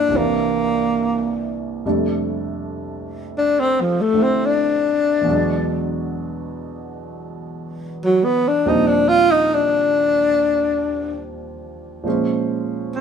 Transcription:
0, 0, Header, 1, 3, 480
1, 0, Start_track
1, 0, Tempo, 852273
1, 1036, Time_signature, 4, 2, 24, 8
1, 7326, End_track
2, 0, Start_track
2, 0, Title_t, "Tenor saxophone"
2, 0, Program_c, 0, 66
2, 0, Note_on_c, 0, 62, 72
2, 95, Note_on_c, 0, 58, 60
2, 104, Note_off_c, 0, 62, 0
2, 894, Note_off_c, 0, 58, 0
2, 1902, Note_on_c, 0, 62, 64
2, 2025, Note_on_c, 0, 60, 72
2, 2034, Note_off_c, 0, 62, 0
2, 2146, Note_on_c, 0, 53, 57
2, 2154, Note_off_c, 0, 60, 0
2, 2257, Note_on_c, 0, 57, 74
2, 2266, Note_off_c, 0, 53, 0
2, 2383, Note_on_c, 0, 60, 62
2, 2391, Note_off_c, 0, 57, 0
2, 2510, Note_on_c, 0, 62, 65
2, 2519, Note_off_c, 0, 60, 0
2, 3296, Note_off_c, 0, 62, 0
2, 4532, Note_on_c, 0, 54, 67
2, 4643, Note_on_c, 0, 59, 70
2, 4652, Note_off_c, 0, 54, 0
2, 4777, Note_on_c, 0, 62, 61
2, 4785, Note_off_c, 0, 59, 0
2, 4891, Note_on_c, 0, 63, 68
2, 4899, Note_off_c, 0, 62, 0
2, 4996, Note_on_c, 0, 62, 74
2, 5005, Note_off_c, 0, 63, 0
2, 5115, Note_on_c, 0, 65, 93
2, 5124, Note_off_c, 0, 62, 0
2, 5246, Note_on_c, 0, 63, 78
2, 5254, Note_off_c, 0, 65, 0
2, 5375, Note_on_c, 0, 62, 62
2, 5383, Note_off_c, 0, 63, 0
2, 6319, Note_off_c, 0, 62, 0
2, 7293, Note_on_c, 0, 61, 59
2, 7326, Note_off_c, 0, 61, 0
2, 7326, End_track
3, 0, Start_track
3, 0, Title_t, "Grand piano"
3, 0, Program_c, 1, 0
3, 0, Control_c, 1, 64, 127
3, 0, Note_on_c, 1, 43, 43
3, 0, Note_on_c, 1, 50, 36
3, 0, Note_on_c, 1, 53, 37
3, 0, Note_on_c, 1, 58, 38
3, 0, Note_on_c, 1, 69, 45
3, 48, Note_on_c, 1, 36, 41
3, 58, Note_on_c, 1, 48, 37
3, 67, Note_off_c, 1, 43, 0
3, 67, Note_off_c, 1, 50, 0
3, 67, Note_off_c, 1, 53, 0
3, 68, Note_off_c, 1, 69, 0
3, 69, Note_off_c, 1, 58, 0
3, 73, Control_c, 1, 64, 0
3, 79, Note_on_c, 1, 52, 36
3, 90, Note_on_c, 1, 58, 37
3, 107, Note_on_c, 1, 62, 47
3, 176, Control_c, 1, 64, 127
3, 1027, Note_off_c, 1, 36, 0
3, 1032, Note_off_c, 1, 48, 0
3, 1042, Note_off_c, 1, 52, 0
3, 1043, Control_c, 1, 64, 0
3, 1044, Note_on_c, 1, 41, 45
3, 1045, Note_on_c, 1, 48, 45
3, 1046, Note_off_c, 1, 62, 0
3, 1046, Note_on_c, 1, 55, 41
3, 1048, Note_off_c, 1, 58, 0
3, 1049, Note_on_c, 1, 57, 45
3, 1054, Note_on_c, 1, 62, 46
3, 1144, Control_c, 1, 64, 127
3, 2329, Note_off_c, 1, 57, 0
3, 2330, Note_on_c, 1, 50, 36
3, 2337, Note_on_c, 1, 57, 33
3, 2342, Note_on_c, 1, 60, 33
3, 2348, Note_on_c, 1, 64, 41
3, 2937, Note_on_c, 1, 40, 44
3, 2955, Note_on_c, 1, 47, 49
3, 2961, Note_off_c, 1, 41, 0
3, 2961, Note_off_c, 1, 48, 0
3, 2961, Note_off_c, 1, 50, 0
3, 2962, Note_off_c, 1, 55, 0
3, 2964, Note_off_c, 1, 57, 0
3, 2965, Control_c, 1, 64, 0
3, 2966, Note_off_c, 1, 60, 0
3, 2966, Note_off_c, 1, 62, 0
3, 2969, Note_off_c, 1, 64, 0
3, 2973, Note_on_c, 1, 54, 48
3, 2984, Note_on_c, 1, 56, 45
3, 3000, Note_on_c, 1, 62, 50
3, 3079, Control_c, 1, 64, 127
3, 4860, Note_off_c, 1, 40, 0
3, 4869, Note_off_c, 1, 47, 0
3, 4876, Note_off_c, 1, 62, 0
3, 4876, Control_c, 1, 64, 0
3, 4877, Note_on_c, 1, 39, 53
3, 4878, Note_off_c, 1, 54, 0
3, 4878, Note_on_c, 1, 46, 46
3, 4878, Note_on_c, 1, 53, 47
3, 4879, Note_on_c, 1, 55, 46
3, 4880, Note_on_c, 1, 60, 47
3, 4883, Note_off_c, 1, 56, 0
3, 4884, Note_on_c, 1, 62, 54
3, 4978, Control_c, 1, 64, 127
3, 6770, Note_off_c, 1, 53, 0
3, 6771, Note_off_c, 1, 46, 0
3, 6779, Note_on_c, 1, 46, 47
3, 6779, Note_on_c, 1, 53, 45
3, 6789, Note_off_c, 1, 39, 0
3, 6790, Note_off_c, 1, 55, 0
3, 6790, Note_on_c, 1, 56, 46
3, 6791, Note_off_c, 1, 60, 0
3, 6793, Note_off_c, 1, 62, 0
3, 6794, Control_c, 1, 64, 0
3, 6795, Note_on_c, 1, 72, 40
3, 6804, Note_on_c, 1, 61, 47
3, 6883, Control_c, 1, 64, 127
3, 7326, Note_off_c, 1, 46, 0
3, 7326, Note_off_c, 1, 53, 0
3, 7326, Note_off_c, 1, 56, 0
3, 7326, Note_off_c, 1, 61, 0
3, 7326, Note_off_c, 1, 72, 0
3, 7326, End_track
0, 0, End_of_file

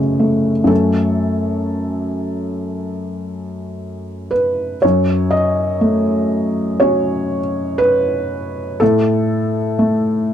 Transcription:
0, 0, Header, 1, 2, 480
1, 0, Start_track
1, 0, Tempo, 1029160
1, 327, Time_signature, 4, 2, 24, 8
1, 2252, Tempo, 988468
1, 4926, End_track
2, 0, Start_track
2, 0, Title_t, "Felt piano"
2, 0, Program_c, 0, 0
2, 0, Control_c, 0, 64, 127
2, 0, Note_on_c, 0, 49, 38
2, 0, Note_on_c, 0, 57, 36
2, 0, Note_on_c, 0, 71, 65
2, 91, Note_off_c, 0, 57, 0
2, 91, Note_on_c, 0, 57, 40
2, 230, Note_off_c, 0, 49, 0
2, 297, Note_off_c, 0, 57, 0
2, 298, Note_on_c, 0, 42, 43
2, 304, Note_on_c, 0, 57, 33
2, 311, Note_on_c, 0, 61, 33
2, 314, Note_on_c, 0, 69, 62
2, 317, Note_off_c, 0, 71, 0
2, 335, Control_c, 0, 64, 0
2, 423, Control_c, 0, 64, 127
2, 2009, Note_on_c, 0, 71, 65
2, 2010, Note_off_c, 0, 69, 0
2, 2220, Note_off_c, 0, 42, 0
2, 2223, Note_off_c, 0, 57, 0
2, 2226, Note_off_c, 0, 61, 0
2, 2247, Note_on_c, 0, 73, 64
2, 2249, Note_off_c, 0, 71, 0
2, 2260, Note_on_c, 0, 42, 47
2, 2262, Control_c, 0, 64, 0
2, 2345, Control_c, 0, 64, 127
2, 2484, Note_on_c, 0, 75, 68
2, 2490, Note_off_c, 0, 73, 0
2, 2728, Note_on_c, 0, 57, 41
2, 3204, Note_off_c, 0, 75, 0
2, 3208, Note_on_c, 0, 73, 67
2, 3215, Note_on_c, 0, 61, 37
2, 3215, Note_on_c, 0, 66, 39
2, 3501, Note_off_c, 0, 57, 0
2, 3686, Note_on_c, 0, 71, 80
2, 3696, Note_off_c, 0, 73, 0
2, 4167, Note_off_c, 0, 42, 0
2, 4167, Note_off_c, 0, 61, 0
2, 4167, Note_off_c, 0, 66, 0
2, 4178, Note_off_c, 0, 71, 0
2, 4180, Note_on_c, 0, 69, 73
2, 4189, Note_on_c, 0, 45, 53
2, 4191, Control_c, 0, 64, 0
2, 4261, Control_c, 0, 64, 127
2, 4660, Note_on_c, 0, 57, 47
2, 4926, Note_off_c, 0, 45, 0
2, 4926, Note_off_c, 0, 57, 0
2, 4926, Note_off_c, 0, 69, 0
2, 4926, End_track
0, 0, End_of_file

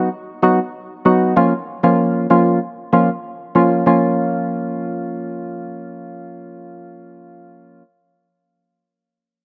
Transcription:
0, 0, Header, 1, 2, 480
1, 0, Start_track
1, 0, Tempo, 625000
1, 1050, Time_signature, 4, 2, 24, 8
1, 7256, End_track
2, 0, Start_track
2, 0, Title_t, "Synth stab"
2, 0, Program_c, 0, 62
2, 326, Note_on_c, 0, 54, 74
2, 327, Note_on_c, 0, 59, 68
2, 329, Note_on_c, 0, 63, 71
2, 331, Note_on_c, 0, 66, 86
2, 454, Note_off_c, 0, 54, 0
2, 455, Note_off_c, 0, 59, 0
2, 456, Note_off_c, 0, 63, 0
2, 457, Note_off_c, 0, 66, 0
2, 807, Note_on_c, 0, 54, 74
2, 809, Note_on_c, 0, 59, 69
2, 811, Note_on_c, 0, 63, 68
2, 812, Note_on_c, 0, 66, 86
2, 1029, Note_off_c, 0, 54, 0
2, 1030, Note_off_c, 0, 59, 0
2, 1031, Note_off_c, 0, 63, 0
2, 1032, Note_off_c, 0, 66, 0
2, 1047, Note_on_c, 0, 53, 87
2, 1048, Note_on_c, 0, 58, 85
2, 1050, Note_on_c, 0, 61, 82
2, 1051, Note_on_c, 0, 65, 99
2, 1175, Note_off_c, 0, 53, 0
2, 1176, Note_off_c, 0, 58, 0
2, 1176, Note_off_c, 0, 61, 0
2, 1177, Note_off_c, 0, 65, 0
2, 1407, Note_on_c, 0, 53, 78
2, 1409, Note_on_c, 0, 58, 71
2, 1411, Note_on_c, 0, 61, 68
2, 1412, Note_on_c, 0, 65, 84
2, 1740, Note_off_c, 0, 53, 0
2, 1741, Note_off_c, 0, 58, 0
2, 1741, Note_off_c, 0, 61, 0
2, 1742, Note_off_c, 0, 65, 0
2, 1766, Note_on_c, 0, 53, 76
2, 1767, Note_on_c, 0, 58, 70
2, 1770, Note_on_c, 0, 61, 72
2, 1771, Note_on_c, 0, 65, 88
2, 1989, Note_off_c, 0, 53, 0
2, 1989, Note_off_c, 0, 58, 0
2, 1991, Note_off_c, 0, 61, 0
2, 1991, Note_off_c, 0, 65, 0
2, 2247, Note_on_c, 0, 53, 78
2, 2249, Note_on_c, 0, 58, 68
2, 2250, Note_on_c, 0, 61, 65
2, 2251, Note_on_c, 0, 65, 82
2, 2375, Note_off_c, 0, 53, 0
2, 2376, Note_off_c, 0, 58, 0
2, 2376, Note_off_c, 0, 61, 0
2, 2377, Note_off_c, 0, 65, 0
2, 2726, Note_on_c, 0, 53, 78
2, 2728, Note_on_c, 0, 58, 69
2, 2730, Note_on_c, 0, 61, 69
2, 2731, Note_on_c, 0, 65, 82
2, 2949, Note_off_c, 0, 53, 0
2, 2950, Note_off_c, 0, 58, 0
2, 2951, Note_off_c, 0, 61, 0
2, 2951, Note_off_c, 0, 65, 0
2, 2966, Note_on_c, 0, 53, 83
2, 2968, Note_on_c, 0, 58, 76
2, 2971, Note_on_c, 0, 61, 77
2, 2973, Note_on_c, 0, 65, 90
2, 6009, Note_off_c, 0, 53, 0
2, 6010, Note_off_c, 0, 58, 0
2, 6012, Note_off_c, 0, 61, 0
2, 6013, Note_off_c, 0, 65, 0
2, 7256, End_track
0, 0, End_of_file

